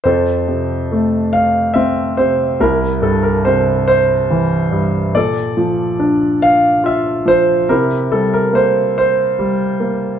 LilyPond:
<<
  \new Staff \with { instrumentName = "Grand piano" } { \time 6/8 \key f \major \tempo 4. = 47 << { c''4. f''8 e''8 c''8 | bes'8 a'16 bes'16 c''8 c''4 r8 | d''4. f''8 e''8 c''8 | bes'8 a'16 bes'16 c''8 c''4 r8 | } \\ { a'4. r4. | e'4. r4. | a'4. r4. | e'4. r4. | } >> }
  \new Staff \with { instrumentName = "Grand piano" } { \clef bass \time 6/8 \key f \major f,8 c8 a4 c'8 c8 | c,8 g,8 c4 e8 g,8 | bes,8 f8 d'4 f'8 f8 | c8 g8 bes4 g8 bes8 | }
>>